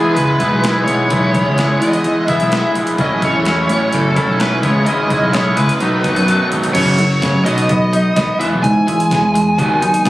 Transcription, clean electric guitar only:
0.00 0.62 E3 medium
0.00 0.41 G#3 medium
0.00 0.40 B3 medium
0.00 0.39 E4 medium
0.40 0.62 G#3 medium
0.40 0.64 B3 medium
0.40 0.65 E4 medium
0.62 1.09 E3 medium
0.62 0.88 G#3 medium
0.62 0.87 B3 medium
0.62 0.86 E4 medium
0.86 1.10 G#3 medium
0.86 1.11 B3 medium
0.86 1.13 E4 medium
1.10 1.57 E3 medium
1.10 1.35 G#3 medium
1.10 1.34 B3 medium
1.10 1.33 E4 medium
1.34 1.57 G#3 medium
1.34 1.58 B3 medium
1.34 1.60 E4 medium
1.57 2.50 E3 medium
1.57 2.29 G#3 medium
1.57 2.28 B3 medium
1.57 2.27 E4 medium
2.27 2.51 G#3 soft
2.27 2.52 B3 medium
2.27 2.54 E4 medium
2.51 3.03 E3 medium
2.51 2.77 G#3 medium
2.51 2.76 B3 medium
2.51 2.75 E4 medium
2.75 2.99 G#3 medium
2.75 2.98 B3 medium
2.75 3.01 E4 medium
2.98 3.44 A2 medium
2.98 3.24 F#3 medium
2.98 3.22 C#4 medium
2.98 3.20 E4 medium
3.22 3.45 F#3 medium
3.22 3.46 C#4 medium
3.22 3.47 E4 medium
3.45 4.37 A2 medium
3.45 4.17 F#3 medium
3.45 4.16 C#4 medium
3.45 4.14 E4 medium
4.15 4.38 F#3 medium
4.15 4.40 C#4 medium
4.15 4.40 E4 medium
4.39 4.61 A2 medium
4.39 4.62 F#3 medium
4.39 4.62 C#4 medium
4.39 4.60 E4 medium
4.61 4.84 C#3 medium
4.61 4.86 G#3 medium
4.61 4.87 B3 medium
4.61 4.88 E4 medium
4.85 5.30 C#3 medium
4.85 5.11 G#3 medium
4.85 5.10 B3 medium
4.85 5.08 E4 medium
5.09 5.32 G#3 medium
5.09 5.33 B3 medium
5.09 5.34 E4 medium
5.32 5.79 C#3 medium
5.32 5.79 G#3 medium
5.32 5.80 B3 medium
5.32 5.80 E4 medium
5.80 6.25 B2 medium
5.80 6.05 F#3 medium
5.80 6.04 A3 medium
5.80 6.02 D#4 medium
6.03 6.26 F#3 medium
6.03 6.27 A3 medium
6.03 6.28 D#4 medium
6.26 6.73 B2 medium
6.26 6.52 F#3 medium
6.26 6.51 A3 medium
6.26 6.49 D#4 medium
6.50 6.75 F#3 medium
6.50 6.74 A3 medium
6.50 6.73 D#4 medium
6.75 7.46 F#2 medium
6.98 7.46 F#3 medium
7.21 7.45 C#3 medium
7.45 8.40 B2 medium
7.69 8.16 B3 medium
7.93 8.40 D#4 medium
8.17 8.40 B3 medium
8.40 8.62 E3 medium
8.63 9.10 E3 medium
8.87 9.33 G#3 medium
9.11 9.58 E3 medium
9.34 9.58 G#3 medium
9.58 10.10 D#3 medium
9.81 10.10 D#4 medium
10.05 10.10 B3 medium

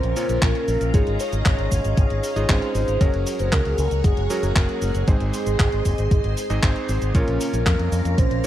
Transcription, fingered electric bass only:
0.04 0.13 A#1 medium
0.29 0.39 A#1 medium
0.42 0.51 A#1 loud
0.68 0.77 A#1 loud
0.81 0.90 A#1 medium
0.94 1.03 G#1 loud
1.07 1.16 G#1 medium
1.33 1.42 G#1 medium
1.46 1.55 G#1 loud
1.58 1.68 G#1 medium
1.72 1.81 G#1 loud
1.84 1.94 G#1 medium
1.97 2.07 G#1 loud
2.10 2.20 G#1 medium
2.36 2.45 G#1 medium
2.49 2.58 G#1 loud
2.75 2.84 G#1 loud
2.88 2.97 G#1 medium
3.01 3.10 F#1 loud
3.14 3.23 F#1 medium
3.40 3.49 F#1 medium
3.52 3.62 C#2 loud
3.65 3.75 C#2 medium
3.78 3.88 C#2 loud
3.91 4.01 C#2 medium
4.04 4.14 F#1 loud
4.17 4.26 F#1 medium
4.43 4.52 F#1 medium
4.56 4.65 F#1 loud
4.82 4.91 F#1 medium
4.95 5.04 F#1 medium
5.08 5.17 G#1 loud
5.21 5.30 G#1 medium
5.47 5.56 G#1 medium
5.59 5.69 G#1 loud
5.73 5.82 G#1 medium
5.85 5.95 F#1 medium
5.98 6.08 G#1 medium
6.11 6.20 G#1 loud
6.24 6.33 G#1 medium
6.50 6.59 G#1 medium
6.63 6.72 G#1 loud
6.89 6.98 G#1 loud
7.02 7.11 G#1 medium
7.15 7.24 A#1 loud
7.28 7.37 A#1 medium
7.53 7.63 A#1 medium
7.66 7.76 F2 loud
7.79 7.89 F2 medium
7.92 8.01 F2 loud
8.05 8.14 F2 medium
8.18 8.27 A#1 medium
8.31 8.40 A#1 medium

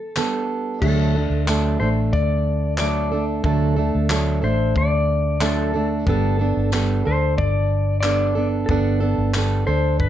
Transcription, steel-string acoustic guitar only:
0.00 0.11 B3 soft
0.16 0.82 G3 medium
0.16 0.82 B3 medium
0.16 0.83 D4 medium
0.16 0.83 A4 medium
0.82 1.14 D3 medium
0.82 1.15 F#3 medium
0.82 1.15 A3 medium
0.82 1.15 D4 medium
0.82 1.14 A4 medium
1.15 1.47 A3 soft
1.15 1.48 D4 soft
1.15 1.48 A4 soft
1.47 1.80 F#3 medium
1.47 1.81 A3 medium
1.47 1.81 D4 medium
1.47 1.79 A4 medium
1.80 2.80 A3 soft
1.80 2.81 D4 soft
1.80 2.81 A4 soft
2.79 3.11 F#3 medium
2.79 3.12 A3 medium
2.79 3.12 D4 medium
2.79 3.10 A4 medium
3.12 3.43 A3 soft
3.12 3.44 D4 soft
3.12 3.44 A4 soft
3.44 3.77 D3 medium
3.44 3.77 F#3 medium
3.44 3.77 A3 medium
3.44 3.77 D4 medium
3.44 3.75 A4 medium
3.76 4.09 A3 soft
3.76 4.10 D4 soft
3.76 4.09 A4 soft
4.09 4.42 F#3 medium
4.09 4.43 A3 medium
4.09 4.42 D4 medium
4.09 4.41 A4 medium
4.42 5.40 A3 soft
4.42 5.42 D4 soft
4.42 5.42 A4 medium
5.40 5.73 F#3 soft
5.40 5.73 A3 medium
5.40 5.74 D4 medium
5.40 5.72 A4 medium
5.74 6.08 A3 soft
5.74 6.07 D4 soft
5.74 6.06 A4 soft
6.07 6.39 G3 medium
6.07 6.40 B3 medium
6.07 6.40 D4 medium
6.07 6.38 A4 medium
6.39 6.72 B3 soft
6.39 6.73 D4 soft
6.39 6.72 A4 soft
6.72 7.05 G3 medium
6.72 7.05 B3 medium
6.72 7.06 D4 medium
6.72 7.04 A4 medium
7.05 8.04 D4 soft
7.05 8.05 A4 soft
8.03 8.36 G3 medium
8.03 8.36 B3 medium
8.03 8.36 D4 medium
8.03 8.34 A4 medium
8.35 8.69 B3 soft
8.35 8.69 D4 soft
8.35 8.68 A4 soft
8.69 9.01 G3 medium
8.69 9.02 B3 medium
8.69 9.01 D4 medium
8.69 8.99 A4 medium
9.00 9.34 B3 soft
9.00 9.34 D4 soft
9.00 9.33 A4 medium
9.35 9.67 G3 medium
9.35 9.67 B3 medium
9.35 9.68 D4 medium
9.35 9.66 A4 medium
9.67 10.09 D4 soft
9.67 10.09 A4 soft

